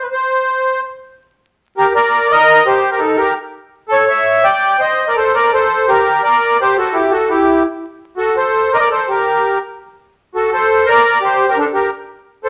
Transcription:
0.02 B4
0.12 C5
1.77 G4 A#4
1.94 A#4 D5
2.31 A#4 D#5
2.66 G4 C5
2.91 G4 A#4
2.99 D#4 A4
3.16 G4 A#4
3.89 A4 C#5
4.07 C#5 E5
4.43 D5 G5
4.79 C5 D#5
5.08 A#4 D5
5.16 A4 C5
5.34 A#4 D5
5.53 A4 C5
5.88 G4 A#4
6.23 A#4 D5
6.61 G4 C5
6.78 F#4 A4
6.93 E4 G4
7.11 F#4 A4
7.29 E4 G4
8.17 F#4 A4
8.37 A4 C5
8.73 A#4 D5 D#5
8.79 A#4 D5
8.90 A4 C5
9.09 G4 A#4
10.35 F#4 A4
10.52 A4 C5
10.86 A#4 D5
11.21 G4 C5
11.48 G4 A#4
11.57 D4 A4
11.73 G4 A#4
12.44 A4 C5

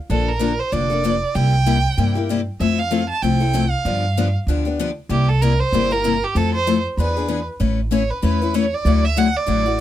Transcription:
0.10 A#1 D3 F3 A#3 D4 A4
0.29 A#4
0.39 D3 F3 A#3 D4 A4
0.59 C5
0.72 F1 D3 F3 A#3 D4 A4 D5
0.90 A#3 D4 A4
1.04 D3 F3 A#3 D4 A4
1.35 C2 C3 G3 A#3 E4 G4 G5
1.66 C3 G3 A#3 E4 G4
1.97 G2 C3 G3 A#3 E4 G4
2.15 A#3 E4 G4
2.29 C3 G3 A#3 E4 G4
2.60 F2 F3 A3 C4 E4 A4 E5
2.79 F5
2.91 F3 A3 C4 E4 A4
3.09 A5
3.22 C2 F3 A3 C4 E4 A4 G5
3.40 C4 E4 A4
3.53 F3 A3 C4 E4 A4
3.71 F5
3.85 G2 D3 F3 B3 D4 G4
4.17 D3 F3 B3 D4 G4
4.47 D2 D3 F3 B3 D4 G4
4.65 B3 D4 G4
4.79 D3 F3 B3 D4 G4
5.09 C2 C3 G3 A#3 E4 G4
5.29 A4
5.42 C3 G3 A#3 E4 G4 A#4
5.60 C5
5.72 G1 C3 G3 A#3 E4 G4
5.91 A#3 E4 G4 A#4
6.04 C3 G3 A#3 E4 G4
6.24 G4
6.35 F2 F3 A3 C4 E4 A4
6.54 C5
6.67 F3 A3 C4 E4 A4
6.97 E2 E3 B3 D4 G#4 B4
7.17 B3 D4 G#4
7.28 E3 B3 D4 G#4
7.60 A1 A3 C#4 E4 B4
7.91 A3 C#4 E4 B4 C#5
8.11 B4
8.22 E2 A3 C#4 E4 B4
8.42 C#4 E4 B4
8.54 A3 C#4 E4 B4 C#5
8.74 D5
8.85 D2 D3 F#3 A3 E4 F#4
9.05 E5
9.17 D3 F#3 A3 E4 F#4 F#5
9.37 D5
9.46 A1 D3 F#3 A3 E4 F#4
9.66 A3 E4 F#4

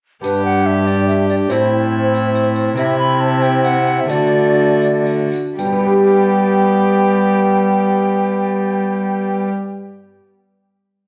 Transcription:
0.21 G2 B3 D4 G4 B4, tambourine
0.45 F#5
0.66 E5
0.87 D5, tambourine
1.08 E5, tambourine
1.29 D5, tambourine
1.48 A2 A3 C4 E4 C5, tambourine
2.14 tambourine
2.35 tambourine
2.56 tambourine
2.75 C3 C4 E4 E5, tambourine
2.99 B5
3.21 A5
3.42 G5, tambourine
3.64 F#5, tambourine
3.87 tambourine
4.01 E5
4.08 D3 A3 F#4 A4 D5, tambourine
4.82 tambourine
5.06 tambourine
5.32 tambourine
5.58 G2 G3 B3 G4 G5, tambourine
5.65 G3
5.72 B3
5.79 G4
5.86 B4

